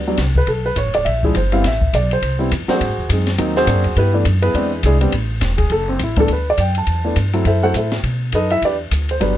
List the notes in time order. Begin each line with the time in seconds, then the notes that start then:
Already playing: D2
0.07 F#3 G3 B3 D4
0.18 C2, kick, snare, hi-hat pedal, ride
0.35 B4, kick
0.47 B1 A4, kick, ride
0.66 B4
0.76 A1 C#5, kick, hi-hat pedal, ride
0.85 F#1
0.94 D1 D5, ride
1.05 A#1 E5, kick, ride
1.23 F3 G#3 D4 E4 G#4, kick
1.35 G1 C5, kick, hi-hat pedal, ride
1.52 G3 B3 C4 E4 F5, ride
1.64 A1 E5, kick, snare, ride
1.81 kick
1.93 B1 D5, kick, hi-hat pedal, ride
2.11 C5, ride
2.22 C2, kick, ride
2.39 G3 B3 C4 E4
2.51 E2, kick, hi-hat pedal, ride
2.68 F#3 A#3 C4 D4 F#4 G#4 C5, muted upright bass stroke, snare, ride
2.81 G#2, kick, ride
2.89 F#2
2.98 D#2
3.09 F#2 G#3 C4 D#4 G#4, kick, hi-hat pedal, ride
3.27 snare, ride
3.38 D#2 F#3 A#3 C4 D#4, kick, ride
3.56 C4 F#4 G#4 C5, snare
3.67 G#2 F#3 A#3 C4 D4, kick, hi-hat pedal, ride
3.75 F#2
3.84 D#2, ride
3.96 G2 B3 E4 G4 B4, kick, ride
4.13 E3 A3 B3 D4
4.25 F#2, kick, hi-hat pedal, ride
4.42 B3 E4 G#4 B4, ride
4.54 E2 G#3 B3 C4 D4, kick, ride
4.83 C2 G#3 D4 E4 G#4, kick, hi-hat pedal, ride
5.01 G3 B3 C4 D4, ride
5.12 A1, kick, ride
5.41 E1, kick, snare, hi-hat pedal, ride
5.58 G#4, kick, ride
5.70 F#1 A4, kick, ride
5.89 C4
5.99 A1 E4, kick, hi-hat pedal, ride
6.16 G2 E3 A3 B3 D4 A4, kick, ride
6.28 D2, ride
6.33 B4
6.50 D5
6.58 F#2 G5, kick, hi-hat pedal, ride
6.75 A5, ride
6.87 E2, kick, ride
7.04 E3 A3 B3 D4
7.16 G2, kick, hi-hat pedal, ride
7.33 F#3 A3 C4 E4, ride
7.45 F#2 E4 A4 C5 E5, kick, ride
7.63 F#3 A3 C4 E4 F#4 A4 C5 F#5
7.74 A2 E4 A4 C5 E5, kick, hi-hat pedal, ride
7.91 snare, ride
8.03 B2, kick, ride
8.32 F#2 D#4 A4 B4 D#5, kick, hi-hat pedal, ride
8.50 E4 E5, ride
8.62 E2 B4 D5, kick, ride
8.66 D4 G4
8.91 D2, kick, hi-hat pedal, ride
9.09 C5, ride
9.20 G1 F#3 G3 B3 D4 B4, kick, ride